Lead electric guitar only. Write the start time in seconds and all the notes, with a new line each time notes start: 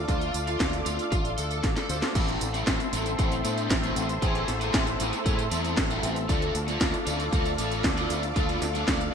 0.09 F4
0.47 F4
0.86 F4
1.12 F4
1.38 A4
1.77 A4
2.15 C4 E4
2.54 C4 E4
2.93 C4 E4
3.19 C4 E4
3.44 B3 D4
3.83 A3 C4
4.22 E4 G#4
4.61 E4 G#4
5.00 E4 G#4
5.25 E4 G#4
5.51 C4 E4
5.90 C4 E4
6.29 F4 A4
6.68 F4 A4
7.07 F4 A4
7.32 F4 A4
7.58 F4 A4
7.97 D4 F4
8.36 D4 F4
8.75 D4 F4